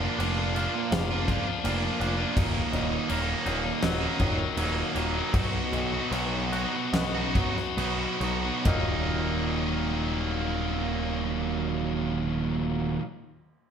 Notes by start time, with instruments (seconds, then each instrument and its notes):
Already playing: distorted electric guitar A#2 F3, clean electric guitar D5
0.00 distorted electric guitar A#3 D4 F4
0.18 picked electric bass F1, distorted electric guitar A#2 F3 A#3 D4 F4, clean electric guitar D5, crash
0.55 distorted electric guitar F3 A#3 D4 F4, crash
0.73 distorted electric guitar A#3 D4 F4, muted distorted electric guitar stroke
0.91 picked electric bass F1, clean electric guitar A#3 D5, snare, crash
1.09 distorted electric guitar A#3 D4 F4
1.27 distorted electric guitar F3 A#3 D4 F4, clean electric guitar D5, kick, crash
1.45 distorted electric guitar A#3 D4 F4, muted distorted electric guitar stroke
1.63 picked electric bass F1, distorted electric guitar A#2 F3 A#3 D4 F4, crash
1.81 distorted electric guitar A#3 D4 F4
2.00 picked electric bass F1, distorted electric guitar F3 A#3 D4 F4, clean electric guitar D5, crash
2.17 distorted electric guitar A#3 D4 F4
2.36 picked electric bass D#1, distorted electric guitar D#2 A#2 D#3 F#3 A#3 D#4, kick, crash
2.72 picked electric bass D#1, distorted electric guitar D#3 F#3 A#3 D#4, clean electric guitar D#5, crash
2.91 distorted electric guitar D#3 F#3 A#3 D#4
3.08 picked electric bass D#1, distorted electric guitar D#2 A#2 D#3 F#3 A#3 D#4, clean electric guitar C#5, crash
3.45 picked electric bass D#1, distorted electric guitar D#3 F#3 A#3 D#4, crash
3.64 distorted electric guitar D#3 F#3 A#3 D#4, muted distorted electric guitar stroke
3.82 picked electric bass D#1, clean electric guitar F#3 D#5, snare, crash
4.00 distorted electric guitar D#3 F#3 A#3 D#4
4.19 picked electric bass D#1, distorted electric guitar D#3 F#3 A#3 D#4, clean electric guitar C#5, kick, crash
4.38 distorted electric guitar D#3 F#3 A#3 D#4, muted distorted electric guitar stroke
4.56 picked electric bass D#1, distorted electric guitar D#2 A#2 D#3 F#3 A#3 D#4, crash
4.75 distorted electric guitar D#3 F#3 A#3 D#4
4.95 picked electric bass D#1, distorted electric guitar D#3 F#3 A#3 D#4, clean electric guitar C#5, crash
5.13 distorted electric guitar D#3 F#3 A#3 D#4
5.33 picked electric bass B1, distorted electric guitar B2 F#3 B3 D#4 F#4, kick, crash
5.72 picked electric bass B1, distorted electric guitar F#3 B3 D#4 F#4, clean electric guitar D#5, crash
5.91 distorted electric guitar B3 D#4 F#4
6.11 picked electric bass B1, distorted electric guitar B2 F#3 B3 D#4 F#4, clean electric guitar C#5, crash
6.51 distorted electric guitar F#3 B3 D#4 F#4, crash
6.72 distorted electric guitar B3 D#4 F#4, muted distorted electric guitar stroke
6.93 picked electric bass B1, clean electric guitar B3 D#5, snare, crash
7.14 distorted electric guitar B3 D#4 F#4
7.34 distorted electric guitar F#3 B3 D#4 F#4, clean electric guitar C#5, kick, crash
7.56 distorted electric guitar B3 D#4 F#4, muted distorted electric guitar stroke, snare
7.77 picked electric bass B1, distorted electric guitar B2 F#3 B3 D#4 F#4, crash
7.99 distorted electric guitar B3 D#4 F#4
8.21 picked electric bass B1, distorted electric guitar F#3 B3 D#4 F#4, clean electric guitar C#5, crash
8.43 distorted electric guitar B3 D#4 F#4
8.65 picked electric bass D#1, distorted electric guitar D#2 A#2 D#3 F#3 A#3 D#4, clean electric guitar D#5, kick, ride bell